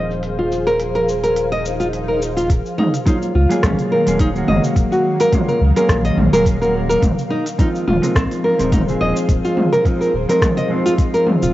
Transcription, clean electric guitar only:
Already playing: F3 G#3 C4 D#4 F4
3.05 F#3 G#3 A#3 C#4 F4
3.49 F#3 G#3 A#3 C#4 G#4
4.06 F#3 G#3 A#3 C#4 G#4
4.33 F#3 G#3 A#3 C#4
4.37 F#4
5.32 F#3 G#3 A#3 C#4 F4
5.76 F#3 G#3 A#3 C#4 G#4
6.33 F#3 G#3 A#3 C#4 G#4
6.61 F#3 G#3 A#3 C#4 F#4
7.58 F3 G#3 C4 D#4 F4
8.02 F3 G#3 C4 D#4 A#4
8.59 F3 G#3 C4 D#4 A#4
8.86 F3 G#3 C4 D#4 G#4
9.85 F3 G#3 C4 D#4 F4
10.29 F3 G#3 C4 D#4 A#4
10.68 F3 G#3 C4 D#4
10.73 F4

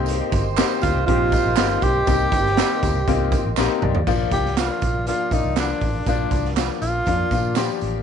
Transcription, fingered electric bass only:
Already playing: C2
0.32 G1
0.83 D2
0.96 C2
1.09 A#1
1.45 A#1
1.58 G1
1.83 B1
2.08 C2
2.32 G1
2.83 D2
2.95 C2
3.08 C2
3.45 A1
3.57 A#1
3.83 C2
3.94 D#2
4.07 A#1
4.31 C2
4.82 A#1
5.32 A#1
5.44 C2
5.82 A1
6.07 A#1
6.32 C2
6.82 A#1
7.07 F2
7.31 A#2
7.82 A1

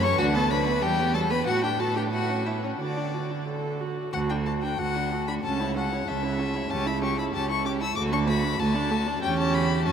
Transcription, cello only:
Already playing: F#2
0.19 D2
0.83 E2
1.47 A2
2.79 D3
4.14 D2
4.79 D2
5.44 C#2
6.07 C#2
6.71 C#2
7.34 C#2
7.97 D2
8.59 D2
9.22 E2
9.87 F#2

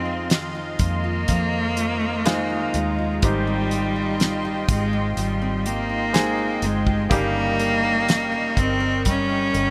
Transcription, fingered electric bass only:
Already playing: F2
0.79 F2
1.29 F2
2.74 D#2
3.23 G#1
4.68 G#1
5.17 G#1
6.62 G1
7.11 G1
8.57 G1
9.54 G1

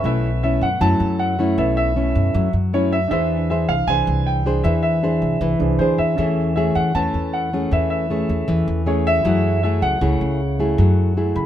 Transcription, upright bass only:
0.04 B1
0.61 F#2
0.81 F#2
1.00 F#2
1.58 B1
2.15 F#2
2.34 F#2
2.53 F#2
3.11 E2
3.69 C2
3.87 C2
4.07 C2
4.64 E2
5.22 C2
5.41 C2
5.60 C2
5.79 D2
5.98 E2
6.18 E2
6.75 E2
6.95 E2
7.14 E2
7.71 E2
8.29 E2
8.48 E2
8.68 E2
9.25 F#2
9.82 C#2
10.01 C#2
10.21 C#2
10.78 F#2
11.36 C#2

